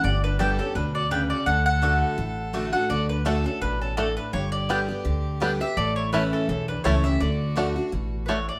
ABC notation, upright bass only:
X:1
M:4/4
L:1/8
Q:"Swing" 1/4=167
K:D
V:1 name="Upright bass" clef=bass
G,,,4 D,,4 | D,,4 A,,,4 | D,,4 A,,,4 | G,,,4 D,,4 |
A,,,4 B,,,2 C,,2 | D,,4 A,,,4 |]